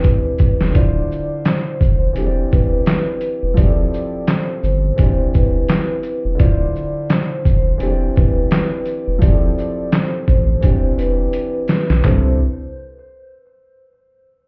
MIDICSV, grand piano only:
0, 0, Header, 1, 2, 480
1, 0, Start_track
1, 0, Key_signature, 0, "major"
1, 0, Tempo, 705882
1, 511, Time_signature, 4, 2, 24, 8
1, 9846, End_track
2, 0, Start_track
2, 0, Title_t, "Grand piano"
2, 0, Program_c, 0, 0
2, 0, Control_c, 0, 64, 127
2, 0, Note_on_c, 0, 52, 68
2, 0, Note_on_c, 0, 60, 62
2, 0, Note_on_c, 0, 62, 62
2, 0, Note_on_c, 0, 67, 66
2, 0, Note_on_c, 0, 74, 71
2, 479, Note_off_c, 0, 62, 0
2, 479, Note_on_c, 0, 50, 65
2, 484, Note_off_c, 0, 52, 0
2, 490, Note_off_c, 0, 60, 0
2, 490, Note_on_c, 0, 62, 59
2, 501, Note_off_c, 0, 67, 0
2, 501, Note_on_c, 0, 64, 63
2, 506, Note_off_c, 0, 74, 0
2, 512, Note_on_c, 0, 65, 63
2, 519, Control_c, 0, 64, 0
2, 522, Note_on_c, 0, 72, 78
2, 647, Control_c, 0, 64, 127
2, 1435, Note_off_c, 0, 50, 0
2, 1441, Note_off_c, 0, 62, 0
2, 1447, Note_off_c, 0, 64, 0
2, 1449, Note_on_c, 0, 52, 66
2, 1452, Note_off_c, 0, 65, 0
2, 1458, Note_off_c, 0, 72, 0
2, 1460, Note_on_c, 0, 60, 63
2, 1471, Note_on_c, 0, 62, 64
2, 1479, Control_c, 0, 64, 0
2, 1482, Note_on_c, 0, 67, 69
2, 1493, Note_on_c, 0, 69, 59
2, 1534, Note_off_c, 0, 69, 0
2, 1537, Note_on_c, 0, 74, 77
2, 1611, Control_c, 0, 64, 127
2, 2400, Note_off_c, 0, 52, 0
2, 2406, Note_off_c, 0, 60, 0
2, 2407, Note_on_c, 0, 53, 66
2, 2412, Note_off_c, 0, 62, 0
2, 2417, Note_off_c, 0, 67, 0
2, 2418, Note_on_c, 0, 60, 65
2, 2429, Note_on_c, 0, 64, 63
2, 2439, Note_on_c, 0, 67, 61
2, 2441, Control_c, 0, 64, 0
2, 2445, Note_off_c, 0, 74, 0
2, 2450, Note_on_c, 0, 68, 57
2, 2493, Note_off_c, 0, 68, 0
2, 2494, Note_on_c, 0, 69, 74
2, 2572, Control_c, 0, 64, 127
2, 3359, Note_off_c, 0, 53, 0
2, 3365, Note_off_c, 0, 60, 0
2, 3371, Note_off_c, 0, 64, 0
2, 3376, Note_off_c, 0, 67, 0
2, 3376, Note_on_c, 0, 52, 70
2, 3386, Note_on_c, 0, 60, 62
2, 3397, Note_on_c, 0, 62, 66
2, 3399, Control_c, 0, 64, 0
2, 3404, Note_off_c, 0, 69, 0
2, 3408, Note_on_c, 0, 67, 63
2, 3419, Note_on_c, 0, 74, 68
2, 3527, Control_c, 0, 64, 127
2, 4319, Note_on_c, 0, 50, 68
2, 4320, Note_off_c, 0, 62, 0
2, 4324, Note_off_c, 0, 52, 0
2, 4329, Note_off_c, 0, 60, 0
2, 4330, Note_on_c, 0, 62, 60
2, 4340, Note_off_c, 0, 67, 0
2, 4340, Note_on_c, 0, 64, 66
2, 4346, Note_off_c, 0, 74, 0
2, 4351, Note_on_c, 0, 65, 63
2, 4360, Control_c, 0, 64, 0
2, 4362, Note_on_c, 0, 72, 77
2, 4468, Control_c, 0, 64, 127
2, 5275, Note_off_c, 0, 50, 0
2, 5281, Note_off_c, 0, 62, 0
2, 5286, Note_off_c, 0, 64, 0
2, 5290, Note_on_c, 0, 52, 71
2, 5292, Note_off_c, 0, 65, 0
2, 5297, Note_off_c, 0, 72, 0
2, 5300, Note_on_c, 0, 60, 65
2, 5311, Note_on_c, 0, 62, 69
2, 5320, Control_c, 0, 64, 0
2, 5322, Note_on_c, 0, 67, 72
2, 5333, Note_on_c, 0, 69, 62
2, 5374, Note_off_c, 0, 69, 0
2, 5377, Note_on_c, 0, 74, 81
2, 5455, Control_c, 0, 64, 127
2, 6241, Note_off_c, 0, 52, 0
2, 6246, Note_off_c, 0, 60, 0
2, 6246, Note_on_c, 0, 53, 67
2, 6252, Note_off_c, 0, 62, 0
2, 6257, Note_off_c, 0, 67, 0
2, 6257, Note_on_c, 0, 60, 65
2, 6268, Note_on_c, 0, 64, 64
2, 6279, Note_on_c, 0, 67, 63
2, 6281, Control_c, 0, 64, 0
2, 6285, Note_off_c, 0, 74, 0
2, 6290, Note_on_c, 0, 68, 57
2, 6333, Note_off_c, 0, 68, 0
2, 6334, Note_on_c, 0, 69, 76
2, 6409, Control_c, 0, 64, 127
2, 7199, Note_off_c, 0, 53, 0
2, 7205, Note_off_c, 0, 60, 0
2, 7210, Note_off_c, 0, 64, 0
2, 7214, Note_on_c, 0, 52, 69
2, 7216, Note_off_c, 0, 67, 0
2, 7225, Note_on_c, 0, 60, 65
2, 7236, Note_on_c, 0, 62, 66
2, 7239, Control_c, 0, 64, 0
2, 7244, Note_off_c, 0, 69, 0
2, 7246, Note_on_c, 0, 67, 65
2, 7258, Note_on_c, 0, 74, 70
2, 7376, Control_c, 0, 64, 127
2, 8163, Note_off_c, 0, 52, 0
2, 8169, Note_off_c, 0, 60, 0
2, 8174, Note_off_c, 0, 62, 0
2, 8180, Note_off_c, 0, 67, 0
2, 8185, Note_off_c, 0, 74, 0
2, 8190, Note_on_c, 0, 60, 79
2, 8190, Note_on_c, 0, 64, 78
2, 8190, Note_on_c, 0, 69, 94
2, 8191, Note_on_c, 0, 48, 89
2, 8191, Note_on_c, 0, 62, 78
2, 8198, Control_c, 0, 64, 0
2, 8414, Note_off_c, 0, 48, 0
2, 8414, Note_off_c, 0, 60, 0
2, 8414, Note_off_c, 0, 62, 0
2, 8414, Note_off_c, 0, 64, 0
2, 8414, Note_off_c, 0, 69, 0
2, 9846, End_track
0, 0, End_of_file